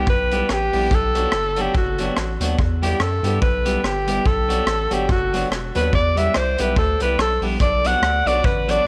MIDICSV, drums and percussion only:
0, 0, Header, 1, 2, 480
1, 0, Start_track
1, 0, Key_signature, 1, "minor"
1, 0, Tempo, 418352
1, 1046, Time_signature, 4, 2, 24, 8
1, 10178, End_track
2, 0, Start_track
2, 0, Title_t, "Drums"
2, 80, Note_on_c, 9, 36, 113
2, 195, Note_off_c, 9, 36, 0
2, 360, Note_on_c, 9, 42, 80
2, 475, Note_off_c, 9, 42, 0
2, 564, Note_on_c, 9, 37, 105
2, 678, Note_off_c, 9, 37, 0
2, 838, Note_on_c, 9, 46, 54
2, 953, Note_off_c, 9, 46, 0
2, 1044, Note_on_c, 9, 36, 99
2, 1049, Note_on_c, 9, 44, 59
2, 1158, Note_off_c, 9, 36, 0
2, 1163, Note_off_c, 9, 44, 0
2, 1321, Note_on_c, 9, 42, 81
2, 1435, Note_off_c, 9, 42, 0
2, 1513, Note_on_c, 9, 37, 116
2, 1627, Note_off_c, 9, 37, 0
2, 1793, Note_on_c, 9, 42, 84
2, 1908, Note_off_c, 9, 42, 0
2, 2002, Note_on_c, 9, 36, 115
2, 2117, Note_off_c, 9, 36, 0
2, 2276, Note_on_c, 9, 42, 78
2, 2391, Note_off_c, 9, 42, 0
2, 2484, Note_on_c, 9, 37, 102
2, 2599, Note_off_c, 9, 37, 0
2, 2762, Note_on_c, 9, 42, 93
2, 2877, Note_off_c, 9, 42, 0
2, 2967, Note_on_c, 9, 36, 104
2, 3081, Note_off_c, 9, 36, 0
2, 3245, Note_on_c, 9, 42, 84
2, 3360, Note_off_c, 9, 42, 0
2, 3441, Note_on_c, 9, 37, 123
2, 3556, Note_off_c, 9, 37, 0
2, 3717, Note_on_c, 9, 42, 86
2, 3832, Note_off_c, 9, 42, 0
2, 3923, Note_on_c, 9, 36, 113
2, 4038, Note_off_c, 9, 36, 0
2, 4195, Note_on_c, 9, 42, 85
2, 4310, Note_off_c, 9, 42, 0
2, 4409, Note_on_c, 9, 37, 100
2, 4524, Note_off_c, 9, 37, 0
2, 4677, Note_on_c, 9, 42, 90
2, 4791, Note_off_c, 9, 42, 0
2, 4883, Note_on_c, 9, 36, 97
2, 4998, Note_off_c, 9, 36, 0
2, 5163, Note_on_c, 9, 42, 85
2, 5277, Note_off_c, 9, 42, 0
2, 5357, Note_on_c, 9, 37, 114
2, 5472, Note_off_c, 9, 37, 0
2, 5634, Note_on_c, 9, 42, 82
2, 5749, Note_off_c, 9, 42, 0
2, 5841, Note_on_c, 9, 36, 113
2, 5955, Note_off_c, 9, 36, 0
2, 6123, Note_on_c, 9, 42, 75
2, 6238, Note_off_c, 9, 42, 0
2, 6331, Note_on_c, 9, 37, 106
2, 6446, Note_off_c, 9, 37, 0
2, 6598, Note_on_c, 9, 42, 86
2, 6713, Note_off_c, 9, 42, 0
2, 6803, Note_on_c, 9, 36, 99
2, 6918, Note_off_c, 9, 36, 0
2, 7082, Note_on_c, 9, 42, 84
2, 7196, Note_off_c, 9, 42, 0
2, 7278, Note_on_c, 9, 37, 124
2, 7393, Note_off_c, 9, 37, 0
2, 7553, Note_on_c, 9, 42, 85
2, 7667, Note_off_c, 9, 42, 0
2, 7760, Note_on_c, 9, 36, 112
2, 7875, Note_off_c, 9, 36, 0
2, 8033, Note_on_c, 9, 42, 82
2, 8148, Note_off_c, 9, 42, 0
2, 8250, Note_on_c, 9, 37, 113
2, 8364, Note_off_c, 9, 37, 0
2, 8513, Note_on_c, 9, 46, 53
2, 8628, Note_off_c, 9, 46, 0
2, 8713, Note_on_c, 9, 44, 57
2, 8721, Note_on_c, 9, 36, 102
2, 8828, Note_off_c, 9, 44, 0
2, 8836, Note_off_c, 9, 36, 0
2, 9001, Note_on_c, 9, 42, 81
2, 9116, Note_off_c, 9, 42, 0
2, 9211, Note_on_c, 9, 37, 123
2, 9325, Note_off_c, 9, 37, 0
2, 9487, Note_on_c, 9, 42, 84
2, 9602, Note_off_c, 9, 42, 0
2, 9686, Note_on_c, 9, 36, 121
2, 9801, Note_off_c, 9, 36, 0
2, 9967, Note_on_c, 9, 42, 85
2, 10081, Note_off_c, 9, 42, 0
2, 10178, End_track
0, 0, End_of_file